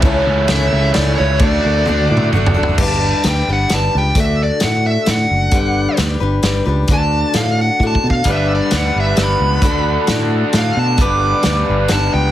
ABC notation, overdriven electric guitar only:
X:1
M:3/4
L:1/8
Q:1/4=132
K:D
V:1 name="Overdriven electric guitar"
[C,E,A,CE] [A,CE] [E,A,CE] [C,E,A,CE] [E,A,CE] [C,E,A,CE] | [D,A,DF] [A,DF] [D,A,DF] [D,A,DF] [D,A,DF] [D,A,DF] | z6 | z6 |
z6 | z6 | [G,B,DB]6 | [D,DFA]6 |
[G,B,DB]6 |]